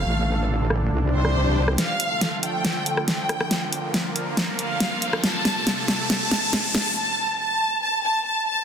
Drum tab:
HH |----------------|x-x-x-x-x-x-x-x-|x-x-x-x-x-x-x-x-|x-x-x-x-x-x-x-x-|
SD |------r----r---r|o---o---o--ro-rr|o---o---o---o--r|o-o-o-o-o-o-o-o-|

HH |----------------|
SD |----------------|